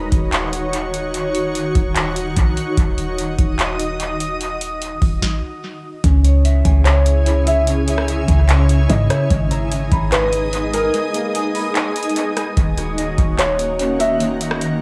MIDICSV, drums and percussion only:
0, 0, Header, 1, 2, 480
1, 0, Start_track
1, 0, Tempo, 408163
1, 1343, Time_signature, 4, 2, 24, 8
1, 17424, End_track
2, 0, Start_track
2, 0, Title_t, "Drums"
2, 141, Note_on_c, 9, 42, 64
2, 142, Note_on_c, 9, 36, 100
2, 259, Note_off_c, 9, 42, 0
2, 260, Note_off_c, 9, 36, 0
2, 382, Note_on_c, 9, 42, 79
2, 384, Note_on_c, 9, 39, 109
2, 499, Note_off_c, 9, 42, 0
2, 502, Note_off_c, 9, 39, 0
2, 622, Note_on_c, 9, 42, 75
2, 740, Note_off_c, 9, 42, 0
2, 861, Note_on_c, 9, 42, 85
2, 979, Note_off_c, 9, 42, 0
2, 1103, Note_on_c, 9, 42, 75
2, 1221, Note_off_c, 9, 42, 0
2, 1342, Note_on_c, 9, 42, 73
2, 1460, Note_off_c, 9, 42, 0
2, 1584, Note_on_c, 9, 42, 76
2, 1701, Note_off_c, 9, 42, 0
2, 1825, Note_on_c, 9, 42, 72
2, 1943, Note_off_c, 9, 42, 0
2, 2061, Note_on_c, 9, 42, 64
2, 2062, Note_on_c, 9, 36, 102
2, 2179, Note_off_c, 9, 42, 0
2, 2180, Note_off_c, 9, 36, 0
2, 2301, Note_on_c, 9, 42, 82
2, 2304, Note_on_c, 9, 39, 109
2, 2419, Note_off_c, 9, 42, 0
2, 2422, Note_off_c, 9, 39, 0
2, 2542, Note_on_c, 9, 42, 75
2, 2660, Note_off_c, 9, 42, 0
2, 2781, Note_on_c, 9, 42, 82
2, 2785, Note_on_c, 9, 36, 90
2, 2899, Note_off_c, 9, 42, 0
2, 2903, Note_off_c, 9, 36, 0
2, 3023, Note_on_c, 9, 42, 76
2, 3141, Note_off_c, 9, 42, 0
2, 3262, Note_on_c, 9, 42, 73
2, 3264, Note_on_c, 9, 36, 121
2, 3380, Note_off_c, 9, 42, 0
2, 3381, Note_off_c, 9, 36, 0
2, 3504, Note_on_c, 9, 42, 78
2, 3621, Note_off_c, 9, 42, 0
2, 3745, Note_on_c, 9, 42, 73
2, 3863, Note_off_c, 9, 42, 0
2, 3981, Note_on_c, 9, 42, 62
2, 3982, Note_on_c, 9, 36, 102
2, 4099, Note_off_c, 9, 42, 0
2, 4100, Note_off_c, 9, 36, 0
2, 4222, Note_on_c, 9, 42, 81
2, 4225, Note_on_c, 9, 39, 106
2, 4340, Note_off_c, 9, 42, 0
2, 4342, Note_off_c, 9, 39, 0
2, 4463, Note_on_c, 9, 42, 72
2, 4581, Note_off_c, 9, 42, 0
2, 4702, Note_on_c, 9, 42, 86
2, 4819, Note_off_c, 9, 42, 0
2, 4943, Note_on_c, 9, 42, 78
2, 5061, Note_off_c, 9, 42, 0
2, 5182, Note_on_c, 9, 42, 75
2, 5300, Note_off_c, 9, 42, 0
2, 5423, Note_on_c, 9, 42, 79
2, 5541, Note_off_c, 9, 42, 0
2, 5665, Note_on_c, 9, 42, 73
2, 5782, Note_off_c, 9, 42, 0
2, 5901, Note_on_c, 9, 46, 47
2, 5902, Note_on_c, 9, 36, 102
2, 6019, Note_off_c, 9, 46, 0
2, 6020, Note_off_c, 9, 36, 0
2, 6143, Note_on_c, 9, 36, 107
2, 6144, Note_on_c, 9, 38, 88
2, 6261, Note_off_c, 9, 36, 0
2, 6262, Note_off_c, 9, 38, 0
2, 7103, Note_on_c, 9, 42, 75
2, 7104, Note_on_c, 9, 36, 121
2, 7220, Note_off_c, 9, 42, 0
2, 7221, Note_off_c, 9, 36, 0
2, 7344, Note_on_c, 9, 42, 82
2, 7462, Note_off_c, 9, 42, 0
2, 7585, Note_on_c, 9, 42, 75
2, 7703, Note_off_c, 9, 42, 0
2, 7821, Note_on_c, 9, 42, 61
2, 7822, Note_on_c, 9, 36, 106
2, 7939, Note_off_c, 9, 42, 0
2, 7940, Note_off_c, 9, 36, 0
2, 8061, Note_on_c, 9, 42, 81
2, 8064, Note_on_c, 9, 39, 110
2, 8179, Note_off_c, 9, 42, 0
2, 8182, Note_off_c, 9, 39, 0
2, 8303, Note_on_c, 9, 42, 76
2, 8420, Note_off_c, 9, 42, 0
2, 8541, Note_on_c, 9, 42, 88
2, 8659, Note_off_c, 9, 42, 0
2, 8784, Note_on_c, 9, 42, 80
2, 8901, Note_off_c, 9, 42, 0
2, 9023, Note_on_c, 9, 42, 82
2, 9140, Note_off_c, 9, 42, 0
2, 9263, Note_on_c, 9, 42, 77
2, 9381, Note_off_c, 9, 42, 0
2, 9384, Note_on_c, 9, 37, 93
2, 9501, Note_off_c, 9, 37, 0
2, 9505, Note_on_c, 9, 42, 75
2, 9623, Note_off_c, 9, 42, 0
2, 9741, Note_on_c, 9, 42, 64
2, 9742, Note_on_c, 9, 36, 109
2, 9859, Note_off_c, 9, 42, 0
2, 9860, Note_off_c, 9, 36, 0
2, 9982, Note_on_c, 9, 42, 83
2, 9985, Note_on_c, 9, 39, 109
2, 10100, Note_off_c, 9, 42, 0
2, 10102, Note_off_c, 9, 39, 0
2, 10223, Note_on_c, 9, 42, 75
2, 10341, Note_off_c, 9, 42, 0
2, 10462, Note_on_c, 9, 42, 88
2, 10465, Note_on_c, 9, 36, 96
2, 10579, Note_off_c, 9, 42, 0
2, 10583, Note_off_c, 9, 36, 0
2, 10704, Note_on_c, 9, 42, 81
2, 10705, Note_on_c, 9, 37, 93
2, 10821, Note_off_c, 9, 42, 0
2, 10823, Note_off_c, 9, 37, 0
2, 10942, Note_on_c, 9, 42, 77
2, 10944, Note_on_c, 9, 36, 124
2, 11060, Note_off_c, 9, 42, 0
2, 11061, Note_off_c, 9, 36, 0
2, 11184, Note_on_c, 9, 42, 78
2, 11301, Note_off_c, 9, 42, 0
2, 11426, Note_on_c, 9, 42, 75
2, 11543, Note_off_c, 9, 42, 0
2, 11661, Note_on_c, 9, 42, 63
2, 11663, Note_on_c, 9, 36, 108
2, 11779, Note_off_c, 9, 42, 0
2, 11780, Note_off_c, 9, 36, 0
2, 11902, Note_on_c, 9, 42, 84
2, 11905, Note_on_c, 9, 39, 109
2, 12020, Note_off_c, 9, 42, 0
2, 12022, Note_off_c, 9, 39, 0
2, 12144, Note_on_c, 9, 42, 74
2, 12261, Note_off_c, 9, 42, 0
2, 12383, Note_on_c, 9, 42, 87
2, 12500, Note_off_c, 9, 42, 0
2, 12625, Note_on_c, 9, 42, 78
2, 12742, Note_off_c, 9, 42, 0
2, 12864, Note_on_c, 9, 42, 76
2, 12982, Note_off_c, 9, 42, 0
2, 13105, Note_on_c, 9, 42, 82
2, 13223, Note_off_c, 9, 42, 0
2, 13346, Note_on_c, 9, 42, 77
2, 13464, Note_off_c, 9, 42, 0
2, 13582, Note_on_c, 9, 46, 50
2, 13699, Note_off_c, 9, 46, 0
2, 13822, Note_on_c, 9, 42, 83
2, 13825, Note_on_c, 9, 39, 111
2, 13940, Note_off_c, 9, 42, 0
2, 13943, Note_off_c, 9, 39, 0
2, 14063, Note_on_c, 9, 42, 76
2, 14144, Note_off_c, 9, 42, 0
2, 14144, Note_on_c, 9, 42, 60
2, 14223, Note_off_c, 9, 42, 0
2, 14223, Note_on_c, 9, 42, 43
2, 14302, Note_off_c, 9, 42, 0
2, 14302, Note_on_c, 9, 42, 91
2, 14420, Note_off_c, 9, 42, 0
2, 14544, Note_on_c, 9, 42, 75
2, 14545, Note_on_c, 9, 37, 94
2, 14661, Note_off_c, 9, 42, 0
2, 14663, Note_off_c, 9, 37, 0
2, 14783, Note_on_c, 9, 42, 77
2, 14784, Note_on_c, 9, 36, 118
2, 14900, Note_off_c, 9, 42, 0
2, 14901, Note_off_c, 9, 36, 0
2, 15024, Note_on_c, 9, 42, 80
2, 15141, Note_off_c, 9, 42, 0
2, 15265, Note_on_c, 9, 42, 71
2, 15383, Note_off_c, 9, 42, 0
2, 15502, Note_on_c, 9, 42, 61
2, 15503, Note_on_c, 9, 36, 106
2, 15619, Note_off_c, 9, 42, 0
2, 15620, Note_off_c, 9, 36, 0
2, 15742, Note_on_c, 9, 42, 82
2, 15745, Note_on_c, 9, 39, 108
2, 15860, Note_off_c, 9, 42, 0
2, 15863, Note_off_c, 9, 39, 0
2, 15984, Note_on_c, 9, 42, 77
2, 16101, Note_off_c, 9, 42, 0
2, 16222, Note_on_c, 9, 42, 85
2, 16340, Note_off_c, 9, 42, 0
2, 16464, Note_on_c, 9, 42, 80
2, 16582, Note_off_c, 9, 42, 0
2, 16704, Note_on_c, 9, 42, 75
2, 16821, Note_off_c, 9, 42, 0
2, 16944, Note_on_c, 9, 42, 80
2, 17062, Note_off_c, 9, 42, 0
2, 17064, Note_on_c, 9, 37, 98
2, 17182, Note_off_c, 9, 37, 0
2, 17185, Note_on_c, 9, 42, 74
2, 17303, Note_off_c, 9, 42, 0
2, 17424, End_track
0, 0, End_of_file